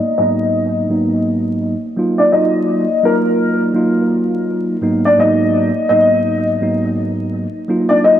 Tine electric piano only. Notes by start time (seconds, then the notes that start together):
0.18 G#2 F#3 A#3 B3 D#4
0.89 G#2 F#3 A#3 B3 D#4
1.96 F#3 A#3 D#4 F4
2.33 F#3 A#3 D#4 F4
3.03 F#3 A#3 D#4 F4
3.73 F#3 A#3 D#4 F4
4.81 G#2 F#3 A#3 B3 D#4
5.17 G#2 F#3 A#3 B3 D#4
5.90 G#2 F#3 A#3 B3 D#4
6.61 G#2 F#3 A#3 B3 D#4
7.68 F#3 A#3 D#4 F4
8.04 F#3 A#3 D#4 F4